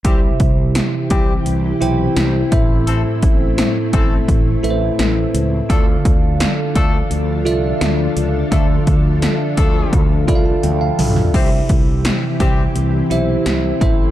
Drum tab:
CC |----------------|----------------|----------------|----------------|
HH |x-x-x-x-x-x-x-x-|x-x-x-x-x-x-x-x-|x-x-x-x-x-x-x-x-|x-x-x-x-x-x-x-o-|
SD |----o-------o---|----o-------o---|----o-------o---|----o-----------|
T1 |----------------|----------------|----------------|------------o---|
T2 |----------------|----------------|----------------|--------------o-|
FT |----------------|----------------|----------------|---------------o|
BD |o-o---o-------o-|--o---o-o-------|o-o---o---------|o-o---o-o-o-----|

CC |x---------------|
HH |--x-x-x-x-x-x-x-|
SD |----o-------o---|
T1 |----------------|
T2 |----------------|
FT |----------------|
BD |o-o---o-------o-|